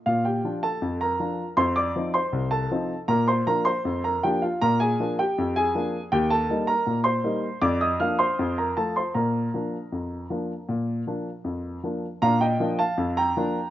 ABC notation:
X:1
M:2/4
L:1/16
Q:1/4=79
K:Bb
V:1 name="Grand piano"
[Ff] [Gg]2 [Aa]2 [Bb]3 | [cc'] [dd']2 [cc']2 [Aa]3 | [Bb] [cc'] [Bb] [cc']2 [Bb] [Gg] [Ff] | [Bb] [_A_a]2 [Gg]2 [Aa]3 |
[Gg] [Aa]2 [Bb]2 [cc']3 | [dd'] [ee'] [ff'] [cc']2 [Bb] [Aa] [cc'] | [Bb]8- | [Bb]6 z2 |
[fb] [eg]2 [fa]2 [gb]3 |]
V:2 name="Grand piano"
B,,2 [F,DF]2 F,,2 [F,DF]2 | F,,2 [F,CE]2 C,,2 [F,CE]2 | B,,2 [F,B,D]2 F,,2 [F,B,D]2 | B,,2 [F,B,D]2 F,,2 [F,B,D]2 |
E,,2 [G,B,E]2 B,,2 [G,B,E]2 | F,,2 [F,B,D]2 F,,2 [F,A,F]2 | B,,2 [F,B,D]2 F,,2 [F,B,D]2 | B,,2 [F,B,D]2 F,,2 [F,B,D]2 |
[B,,D]2 [F,B,D]2 F,,2 [F,B,D]2 |]